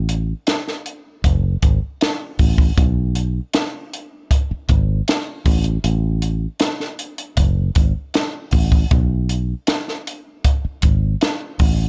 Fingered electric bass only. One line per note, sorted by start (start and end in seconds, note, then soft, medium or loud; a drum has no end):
0.00 0.32 A1 medium
1.24 1.55 F#1 medium
1.63 1.78 G#1 medium
2.39 2.70 A1 medium
2.78 3.39 B1 medium
4.51 muted fingered electric bass stroke soft
4.70 5.00 G#1 medium
5.46 5.77 A1 medium
5.84 6.45 A1 medium
7.38 7.69 F#1 medium
7.76 7.92 G#1 medium
8.53 8.84 A1 medium
8.92 9.53 B1 medium
10.65 muted fingered electric bass stroke soft
10.83 11.14 G#1 medium
11.60 11.89 A1 medium